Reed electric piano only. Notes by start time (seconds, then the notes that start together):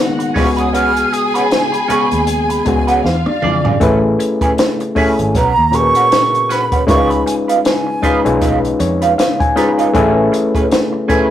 Already playing: D#3 G#3 A#3 B3 D#4 F#4
0.35 C#3 G#3 B3 F4
0.45 F#4
1.88 C#3 G#3 B3 G#4
2.65 C#3 G#3 B3 F#4
3.42 E3 G#3 D4 F4
3.80 A3 C#4 E4 G#4 B4
4.95 A3 C#4 E4 G#4 C#5
5.71 A#2 C#4 F#4 G#4 A#4
5.80 B4
6.87 G#3 C#4 D#4 F4 B4
8.02 G#3 C#4 D#4 F4 B4
8.24 G#3 C#4 D#4 F4 B4
8.80 C#5
9.18 F5
9.40 G#5
9.56 G#3 C#4 D#4 F4 B4 A#5
9.94 A3 C#4 E4 G#4 B4
11.08 A3 C#4 E4 G#4 B4